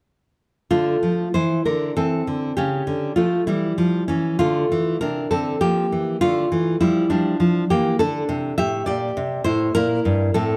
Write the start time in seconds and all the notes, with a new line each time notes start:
0.71 D3 A3 F4
1.03 F3
1.34 E3 E4 C5
1.65 D3 D4 A#4
1.97 E3 C4 A4
2.27 D3
2.57 C#3 C#4 G4
2.87 D3
3.16 F3 A3 F4
3.47 E3 G3 E4
3.78 F3
4.08 E3 C#4
4.39 D3 A3 F4
4.72 E3
5.01 C3 D4 A#4
5.31 D3 C4 A4
5.61 F3 A#3 G4
5.92 E3
6.21 D3 A3 F4
6.52 E3
6.81 F3 G3 E4
7.10 F3 G3 D4
7.40 F3
7.70 E3 A#3 G4
7.99 D3 D4 A4
8.29 C3
8.58 A2 G4 E5
8.86 A#2 G4 D5
9.17 C3
9.44 A2 E4 C5
9.75 A#2 E4 A#4
10.05 G2
10.34 A2 C4 A4